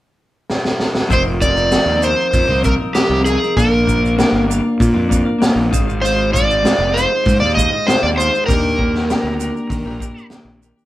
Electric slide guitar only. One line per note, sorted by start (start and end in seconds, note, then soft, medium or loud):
1.13 1.21 C5 medium
1.42 2.05 D5 medium
2.04 2.65 C5 medium
2.65 2.73 A#4 medium
2.95 3.24 G4 medium
3.25 3.54 G#4 medium
3.57 4.45 A#4 medium
6.02 6.31 C5 medium
6.33 6.97 D5 medium
6.94 7.37 C5 medium
7.40 7.54 D5 medium
7.55 7.86 D#5 medium
7.87 8.01 C5 medium
8.03 8.08 D5 medium
8.18 8.46 C5 medium
8.46 10.26 A#4 medium